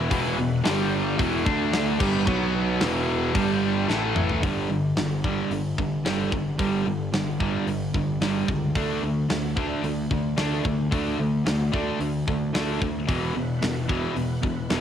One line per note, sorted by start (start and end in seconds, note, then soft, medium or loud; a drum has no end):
0.00 0.10 B2 loud
0.00 0.11 E3 loud
0.00 0.63 E4 medium
0.00 0.63 B4 medium
0.00 0.63 F#5 medium
0.10 0.36 E1 loud
0.10 0.37 E2 loud
0.10 0.37 B2 medium
0.10 0.38 E3 loud
0.10 kick loud
0.10 open hi-hat medium
0.38 0.63 E1 medium
0.38 0.59 E2 medium
0.38 0.60 B2 medium
0.63 1.15 G1 loud
0.63 1.17 G2 loud
0.63 1.18 D3 loud
0.63 1.18 G3 medium
0.63 1.18 G3 loud
0.63 1.18 D4 medium
0.63 1.18 A4 medium
0.63 snare loud
0.63 open hi-hat medium
1.18 1.44 E1 medium
1.18 1.45 E2 medium
1.18 1.45 B2 loud
1.18 1.45 E3 loud
1.18 1.46 E4 medium
1.18 1.46 B4 medium
1.18 1.46 F#5 medium
1.18 kick loud
1.18 open hi-hat medium
1.45 1.96 D2 loud
1.45 1.98 D3 medium
1.45 1.99 A3 medium
1.45 1.99 D4 medium
1.45 1.99 D4 loud
1.45 2.00 A4 medium
1.45 1.99 E5 medium
1.45 kick loud
1.73 snare loud
1.73 open hi-hat medium
1.99 2.25 G1 loud
1.99 2.26 G2 loud
1.99 2.26 D3 medium
1.99 2.26 G3 loud
1.99 2.27 E4 medium
1.99 2.27 B4 medium
1.99 2.27 F#5 medium
1.99 kick loud
1.99 crash loud
2.26 2.77 B1 loud
2.26 2.79 B2 loud
2.26 2.80 F#3 loud
2.26 3.34 B3 medium
2.26 2.80 B3 loud
2.26 3.34 F#4 medium
2.26 2.80 C#5 medium
2.26 kick loud
2.80 3.31 E1 loud
2.80 3.34 E2 loud
2.80 3.34 B2 medium
2.80 3.35 E3 medium
2.80 3.34 E3 loud
2.80 snare loud
2.80 open hi-hat medium
3.34 3.85 G1 medium
3.34 3.88 G2 medium
3.34 3.87 D3 medium
3.34 3.88 G3 loud
3.34 3.89 G3 medium
3.34 3.88 D4 medium
3.34 3.88 A4 medium
3.34 kick loud
3.34 open hi-hat medium
3.88 4.40 A1 loud
3.88 4.42 A2 medium
3.88 4.42 E3 medium
3.88 4.42 A3 loud
3.88 4.42 A3 medium
3.88 4.43 E4 medium
3.88 4.43 B4 medium
3.88 snare medium
4.16 mid tom medium
4.29 floor tom medium
4.42 4.65 G1 medium
4.42 4.68 G2 medium
4.42 4.68 D3 medium
4.42 4.69 G3 medium
4.42 kick loud
4.42 open hi-hat medium
4.70 4.91 G1 medium
4.70 4.95 G2 medium
4.70 4.95 D3 medium
4.97 5.40 G1 medium
4.97 5.22 G2 medium
4.97 5.22 D3 medium
4.97 snare medium
4.97 open hi-hat medium
5.24 5.50 G2 medium
5.24 5.50 D3 medium
5.24 5.50 G3 loud
5.24 kick medium
5.51 5.73 G1 medium
5.51 5.76 G2 medium
5.51 5.76 D3 medium
5.51 open hi-hat medium
5.78 6.00 G1 medium
5.78 6.03 G2 medium
5.78 6.03 D3 medium
5.78 kick medium
6.05 6.27 G1 medium
6.05 6.31 G2 medium
6.05 6.31 D3 medium
6.05 6.31 G3 medium
6.05 snare loud
6.05 open hi-hat medium
6.32 6.54 G1 medium
6.32 6.57 G2 medium
6.32 6.57 D3 medium
6.32 kick medium
6.59 6.81 G1 medium
6.59 6.85 G2 medium
6.59 6.85 D3 medium
6.59 6.85 G3 medium
6.59 kick loud
6.59 open hi-hat medium
6.86 7.08 G1 medium
6.86 7.11 G2 medium
6.86 7.11 D3 medium
7.13 7.56 G1 medium
7.13 7.38 G2 medium
7.13 7.38 D3 medium
7.13 snare loud
7.13 open hi-hat medium
7.40 7.66 G2 medium
7.40 7.66 D3 medium
7.40 7.66 G3 medium
7.40 kick medium
7.67 7.89 G1 medium
7.67 7.92 G2 medium
7.67 7.93 D3 medium
7.67 open hi-hat medium
7.94 8.16 G1 medium
7.94 8.19 G2 medium
7.94 8.20 D3 medium
7.94 kick medium
8.21 8.43 G1 medium
8.21 8.47 G2 medium
8.21 8.47 D3 medium
8.21 8.48 G3 medium
8.21 snare loud
8.21 open hi-hat medium
8.48 8.70 C#2 medium
8.48 8.73 G2 medium
8.48 8.73 D3 medium
8.48 kick medium
8.75 8.97 D2 medium
8.75 9.02 D3 medium
8.75 9.02 A3 medium
8.75 9.02 D4 loud
8.75 kick loud
8.75 open hi-hat medium
9.03 9.24 D2 medium
9.03 9.28 D3 medium
9.03 9.28 A3 medium
9.30 9.73 D2 medium
9.30 9.54 D3 medium
9.30 9.55 A3 medium
9.30 snare loud
9.30 open hi-hat medium
9.57 9.82 D3 medium
9.57 9.83 A3 medium
9.57 9.83 D4 medium
9.57 kick medium
9.84 10.06 D2 medium
9.84 10.09 D3 medium
9.84 10.09 A3 medium
9.84 open hi-hat medium
10.11 10.33 D2 medium
10.11 10.35 D3 medium
10.11 10.36 A3 medium
10.11 kick medium
10.37 10.59 D2 medium
10.37 10.63 D3 medium
10.37 10.63 A3 medium
10.37 10.64 D4 loud
10.37 snare loud
10.37 open hi-hat medium
10.64 10.87 D2 medium
10.64 10.89 D3 medium
10.64 10.89 A3 medium
10.64 kick medium
10.91 11.14 D2 medium
10.91 11.17 D3 medium
10.91 11.17 A3 medium
10.91 11.18 D4 loud
10.91 kick loud
10.91 open hi-hat medium
11.18 11.40 D2 medium
11.18 11.43 D3 medium
11.18 11.43 A3 medium
11.46 11.89 D2 medium
11.46 11.70 D3 medium
11.46 11.71 A3 medium
11.46 snare loud
11.46 open hi-hat medium
11.72 11.98 D3 medium
11.72 11.99 A3 medium
11.72 11.99 D4 loud
11.72 kick medium
12.00 12.22 D2 medium
12.00 12.25 D3 medium
12.00 12.25 A3 medium
12.00 open hi-hat medium
12.28 12.49 D2 medium
12.28 12.52 D3 medium
12.28 12.52 A3 medium
12.28 kick medium
12.54 12.76 D2 medium
12.54 12.80 D3 medium
12.54 12.80 A3 medium
12.54 12.80 D4 medium
12.54 snare loud
12.54 open hi-hat medium
12.81 13.03 D2 medium
12.81 13.06 D3 medium
12.81 13.06 A3 medium
12.81 kick medium
13.07 13.30 E1 medium
13.07 13.33 E2 medium
13.07 13.34 B2 medium
13.07 13.34 E3 medium
13.07 14.81 E4 medium
13.07 14.81 B4 medium
13.07 14.81 F#5 medium
13.07 kick loud
13.07 open hi-hat medium
13.35 13.57 E1 medium
13.35 13.59 E2 medium
13.35 13.59 B2 medium
13.62 14.05 E1 medium
13.62 13.86 E2 medium
13.62 13.87 B2 medium
13.62 snare loud
13.62 open hi-hat medium
13.88 14.14 E2 medium
13.88 14.15 B2 medium
13.88 14.15 E3 loud
13.88 kick medium
14.16 14.38 E1 medium
14.16 14.40 E2 medium
14.16 14.40 B2 medium
14.16 open hi-hat medium
14.43 14.65 E1 medium
14.43 14.67 E2 medium
14.43 14.67 B2 medium
14.43 kick medium
14.70 14.81 E1 medium
14.70 14.81 E2 medium
14.70 14.81 B2 medium
14.70 14.81 E3 loud
14.70 snare loud
14.70 open hi-hat medium